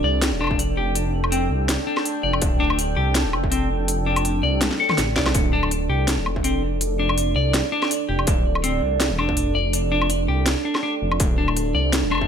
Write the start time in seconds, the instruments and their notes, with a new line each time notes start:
Already playing: ambient pad D4 A4 G5
0.04 detuned saw bass C2, clean electric guitar D5
0.22 snare, closed hi-hat
0.32 detuned saw bass D1
0.41 detuned saw bass F1, clean electric guitar D4, low woodblock
0.44 low woodblock
0.47 kick, low woodblock
0.59 closed hi-hat
0.77 clean electric guitar G4
0.95 closed hi-hat
1.24 low woodblock
1.32 clean electric guitar C4, closed hi-hat
1.51 detuned saw bass C2
1.69 snare, closed hi-hat
1.87 clean electric guitar D4
1.97 snare, low woodblock
2.05 closed hi-hat
2.23 detuned saw bass F1, clean electric guitar D5
2.33 low woodblock
2.42 detuned saw bass D1, kick, closed hi-hat
2.60 clean electric guitar D4
2.70 low woodblock
2.79 closed hi-hat
2.97 detuned saw bass C2, clean electric guitar G4
3.15 snare, closed hi-hat
3.25 detuned saw bass D1
3.33 detuned saw bass F1, low woodblock
3.44 kick
3.51 clean electric guitar C4, closed hi-hat
3.88 closed hi-hat
4.06 clean electric guitar D4
4.16 closed hi-hat, low woodblock
4.25 closed hi-hat
4.43 detuned saw bass C2, clean electric guitar D5
4.61 snare, closed hi-hat, high tom
4.71 snare
4.80 clean electric guitar A4
4.90 snare, mid tom, low woodblock
4.98 detuned saw bass A1, snare, closed hi-hat
5.16 detuned saw bass C2, clean electric guitar D5, kick, snare
5.26 snare, low woodblock
5.35 detuned saw bass D1, ambient pad D5, kick, closed hi-hat
5.53 clean electric guitar D4
5.63 low woodblock
5.71 closed hi-hat
5.89 detuned saw bass C2, clean electric guitar G4
6.08 snare, closed hi-hat
6.17 detuned saw bass D1
6.26 detuned saw bass F1, low woodblock
6.36 kick
6.44 clean electric guitar C4, closed hi-hat
6.81 closed hi-hat
6.99 clean electric guitar D4
7.09 low woodblock
7.18 closed hi-hat
7.36 detuned saw bass C2, clean electric guitar D5
7.54 snare, closed hi-hat
7.72 clean electric guitar D4
7.82 snare, low woodblock
7.91 closed hi-hat
8.09 detuned saw bass F1, clean electric guitar G4
8.19 low woodblock
8.27 detuned saw bass D1, kick, closed hi-hat
8.55 low woodblock
8.64 clean electric guitar C4, closed hi-hat
8.82 detuned saw bass C2
9.00 snare, closed hi-hat
9.10 detuned saw bass D1
9.18 detuned saw bass F1, clean electric guitar D4, low woodblock
9.29 kick
9.37 closed hi-hat
9.55 clean electric guitar D5
9.73 closed hi-hat
9.92 clean electric guitar D4
10.02 low woodblock
10.10 closed hi-hat
10.28 detuned saw bass C2, clean electric guitar G4
10.46 snare, closed hi-hat
10.65 clean electric guitar D4
10.75 snare, low woodblock
10.83 clean electric guitar D4
11.02 detuned saw bass F1
11.12 low woodblock
11.20 detuned saw bass D1, ambient pad F5, kick, closed hi-hat
11.38 clean electric guitar D4
11.48 low woodblock
11.57 closed hi-hat
11.74 detuned saw bass C2, clean electric guitar D5
11.93 snare, closed hi-hat
12.03 detuned saw bass D1
12.11 detuned saw bass F1, clean electric guitar D4, low woodblock
12.15 low woodblock
12.18 kick, low woodblock